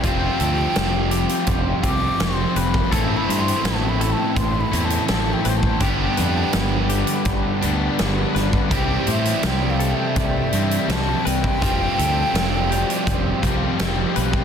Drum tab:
HH |x-x-x-xxx-x-x-x-|x-xxx-x-x-xxx-x-|x-x-x-xxx-x-x-x-|x-xxx-x-x-xxx-x-|
SD |----o-------o---|----o-------o---|----o-------o-o-|----o-------o---|
BD |o-------o-o----o|o-------o------o|o-------o------o|o-------o------o|

HH |x-x-x-xxx-x-x-x-|
SD |----o-------o---|
BD |o-------o-o----o|